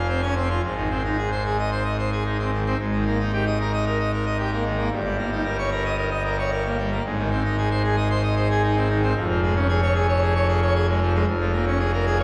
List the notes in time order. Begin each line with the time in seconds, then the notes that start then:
Already playing: F1 F2
0.08 C4 C5
0.22 C#4 G#5
0.36 C4 C5
0.49 F4
0.62 G#1 G#2
0.76 D#3
0.90 C4
1.04 D#4
1.18 G#4
1.31 C5
1.45 G#4
1.59 D#5
1.71 C5
1.84 D#5
1.98 C5
2.12 G#4
2.25 D#4
2.39 C4
2.52 D#3
2.66 C4
2.79 G#1 G#2
2.92 D#3
3.06 A#3
3.19 D#4
3.33 G4
3.47 D#5
3.60 A#4
3.73 D#5
3.86 A#4
3.99 D#5
4.13 A#4
4.26 D#5
4.38 G4
4.52 A#3
4.64 D#3
4.77 A#3
4.90 G1 G2
5.04 G3
5.18 A#3
5.32 D#4
5.45 A#4
5.58 C#5
5.71 A#4
5.84 D#5
5.97 A#4
6.11 D#5
6.24 A#4
6.38 C#5
6.51 A#4
6.65 A#3
6.78 G3
6.92 A#3
7.05 G#1 G#2
7.18 D#3
7.31 C4
7.45 D#4
7.58 G#4
7.71 C5
7.84 G#4
7.97 D#5
8.10 C5
8.23 D#5
8.36 C5
8.50 G#4
8.63 D#4
8.76 C4
8.89 D#3
9.02 C4
9.16 F1 F2
9.29 F3
9.42 G#3
9.56 C#4
9.69 G#4
9.82 C#5
9.95 G#4
10.08 C#5
10.21 G#4
10.35 C#5
10.48 G#4
10.61 C#5
10.74 G#4
10.88 G#3
11.01 F3
11.14 G#3
11.27 F1 F2
11.40 F3
11.53 A#3
11.67 C#4
11.79 G#4
11.93 A#4
12.06 G#4
12.19 C#5